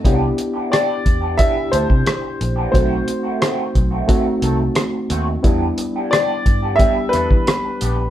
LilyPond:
<<
  \new Staff \with { instrumentName = "Grand piano" } { \time 4/4 \key c \major \tempo 4 = 89 r4 d''4 e''8 c''4. | c''2 r2 | r4 d''4 e''8 b'4. | }
  \new Staff \with { instrumentName = "Reed electric piano" } { \time 4/4 \key c \major <b d' e' g'>4. r8 <b, d' e' g'>4. r8 | <a c' dis' fis'>4. r8 <a c' dis' fis'>4. r8 | <g b d' e'>4. r8 <g b d' g'>4. r8 | }
  \new Staff \with { instrumentName = "Clean electric guitar" } { \time 4/4 \key c \major <e b d' g'>16 r8 <e b d' g'>16 <e b d' g'>16 r8 <e b d' g'>16 <e b d' g'>16 r16 <e b d' a'>16 r4 <e b d' g'>16 | <dis a c' fis'>16 r8 <dis a c' fis'>16 <dis a c' fis'>16 r8 <dis a c' fis'>16 <dis a c' fis'>16 r16 <dis a c' a'>16 r8. <dis a c' fis'>16 r16 | <g b d' g'>16 r8 <g b d' g'>16 <g b d' g'>16 r8 <g b d' g'>16 <g b d' g'>16 r16 <g b d' a'>16 r8. <g b d' g'>16 r16 | }
  \new Staff \with { instrumentName = "Fingered electric bass" } { \clef bass \time 4/4 \key c \major c,8 r4 e,8. r16 d,16 c16 r8 bes,,8 | b,,8 r4 b,,8 r8 c,8 r8 dis,8 | e,8 r4 g,8. r16 e,16 e16 r8 bes,,8 | }
  \new DrumStaff \with { instrumentName = "Drums" } \drummode { \time 4/4 <hh bd>8 hh8 <hh ss>8 <hh bd>8 <hh bd>8 hh16 bd16 <hh ss>8 hh8 | <hh bd>8 hh8 <hh ss>8 <hh bd>8 <hh bd>8 hh8 <hh ss>8 hh8 | <hh bd>8 hh8 <hh ss>8 <hh bd>8 <hh bd>8 <hh ss>16 bd16 <hh ss>8 hh8 | }
>>